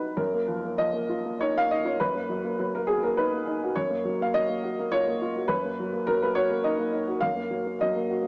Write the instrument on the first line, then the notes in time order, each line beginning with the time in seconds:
upright piano
Already playing: F#2 D#3 F#3 B3 D#4 F#4 A#4 B4
0.17 F#2 A#4
0.34 A#3
0.48 F3
0.64 A#3
0.78 F3 D#5
0.93 A#3
1.09 F4
1.25 A#3
1.41 D#4 C#5
1.57 A#3 F5
1.71 D#4 D#5
1.84 F4 C#5
2.00 F#2 B4
2.15 A#3
2.29 F#3
2.44 A#3
2.59 F#3
2.74 A#3 A#4
2.87 F#4 G#4
3.03 A#3 A#4
3.17 D#4 B4
3.33 A#3
3.48 D#4
3.64 F#4
3.76 F#2 C#5
3.90 A#3
4.05 F#3
4.21 A#3 F5
4.34 F#3 D#5
4.48 A#3
4.63 F#4
4.79 A#3
4.92 F4 C#5
5.08 A#3
5.21 F4
5.36 F#4
5.48 F#2 B4
5.64 A#3
5.80 F#3
5.93 A#3
6.07 F#3 A#4
6.22 A#3 B4
6.35 F#4 C#5
6.50 A#3
6.64 D#4 D#5
6.79 A#3
6.92 D#4
7.07 F#4
7.20 F#2 F5
7.36 A#3
7.50 F#3
7.66 A#3
7.81 F#3 D#5
7.95 A#3
8.10 F#4
8.22 A#3